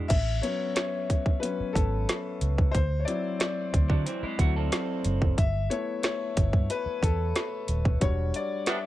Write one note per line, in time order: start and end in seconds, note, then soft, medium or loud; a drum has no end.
0.00 0.12 G#3 soft
0.00 0.12 D4 soft
0.00 0.12 F#4 soft
0.08 0.39 A1 loud
0.08 0.43 E5 loud
0.08 kick loud
0.08 closed hi-hat medium
0.08 crash loud
0.42 1.38 F#3 medium
0.42 1.38 B3 medium
0.42 1.39 C#4 medium
0.42 0.50 C#5 medium
0.42 closed hi-hat medium
0.75 1.44 C#5 medium
0.75 snare loud
0.75 closed hi-hat medium
1.10 kick medium
1.10 closed hi-hat medium
1.26 kick medium
1.40 1.72 F#3 soft
1.40 1.72 B3 soft
1.40 1.72 C#4 medium
1.40 1.75 B4 medium
1.40 closed hi-hat medium
1.60 muted fingered electric bass stroke medium
1.73 2.04 G#1 medium
1.73 2.76 A4 medium
1.73 kick medium
1.73 closed hi-hat medium
2.09 snare medium
2.09 closed hi-hat medium
2.41 2.70 C#2 medium
2.41 closed hi-hat medium
2.58 kick loud
2.71 3.04 D2 medium
2.71 3.00 C5 medium
2.71 kick loud
2.71 closed hi-hat medium
3.00 3.07 C#5 medium
3.05 3.51 F#3 medium
3.05 3.51 C4 medium
3.05 3.52 E4 medium
3.05 3.38 D5 medium
3.05 closed hi-hat medium
3.39 4.68 D5 medium
3.39 snare loud
3.39 closed hi-hat medium
3.74 3.88 D2 medium
3.74 kick medium
3.74 closed hi-hat medium
3.90 4.04 D3 loud
3.90 4.06 F#3 medium
3.90 4.05 D4 medium
3.90 kick medium
4.06 4.22 E3 medium
4.06 4.22 C4 medium
4.06 closed hi-hat medium
4.23 4.39 G#3 medium
4.23 4.38 E4 medium
4.23 muted fingered electric bass stroke soft
4.39 4.68 D2 medium
4.39 4.69 F#3 soft
4.39 4.56 A3 medium
4.39 4.69 C4 soft
4.39 4.69 E4 medium
4.39 4.55 F#4 medium
4.39 kick medium
4.39 closed hi-hat medium
4.56 5.35 C4 medium
4.56 5.34 A4 medium
4.72 snare medium
4.72 closed hi-hat medium
5.04 5.34 F#1 loud
5.04 closed hi-hat medium
5.22 kick loud
5.38 5.67 G1 loud
5.38 5.72 E5 loud
5.38 kick loud
5.38 closed hi-hat medium
5.70 6.14 A3 medium
5.70 6.15 B3 medium
5.70 6.15 E4 medium
5.70 6.01 C#5 loud
5.70 closed hi-hat medium
6.03 6.71 C#5 medium
6.03 snare loud
6.03 closed hi-hat medium
6.37 6.52 G1 medium
6.37 kick loud
6.37 closed hi-hat medium
6.53 6.68 G2 medium
6.53 kick loud
6.70 7.04 B4 loud
6.70 closed hi-hat loud
6.86 muted fingered electric bass stroke medium
7.03 7.32 E2 loud
7.03 8.04 A4 medium
7.03 kick medium
7.03 closed hi-hat medium
7.36 snare medium
7.36 closed hi-hat medium
7.68 7.98 D#1 medium
7.68 closed hi-hat medium
7.85 kick loud
8.01 8.31 E1 medium
8.01 8.45 G3 medium
8.01 8.45 D4 medium
8.01 8.45 F#4 medium
8.01 8.35 C#5 loud
8.01 kick loud
8.01 closed hi-hat loud
8.34 8.69 D5 medium
8.34 closed hi-hat medium
8.66 8.78 G3 medium
8.66 8.78 B3 medium
8.66 8.78 D4 medium
8.66 8.86 E5 medium
8.66 snare loud
8.66 closed hi-hat medium